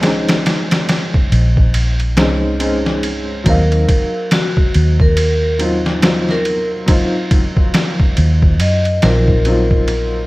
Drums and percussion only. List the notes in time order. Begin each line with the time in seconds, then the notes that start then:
0.03 snare, ride
0.29 snare, ride
0.46 snare, ride
0.71 snare, ride
0.89 snare, ride
1.14 kick
1.32 ride
1.57 kick
1.74 ride
2.00 ride
2.17 snare, ride
2.60 ride
2.86 snare
3.03 ride
3.46 kick, ride
3.72 ride
3.89 kick, ride
4.31 snare, ride
4.57 kick
4.74 ride
5.00 kick
5.17 ride
5.59 ride
5.86 snare
6.02 snare, ride
6.29 snare
6.45 ride
6.88 kick, ride
7.31 kick, ride
7.57 kick
7.74 snare, ride
8.00 kick
8.17 ride
8.42 kick
8.60 ride
8.85 ride
9.02 snare, ride
9.28 kick
9.45 ride
9.71 kick
9.88 ride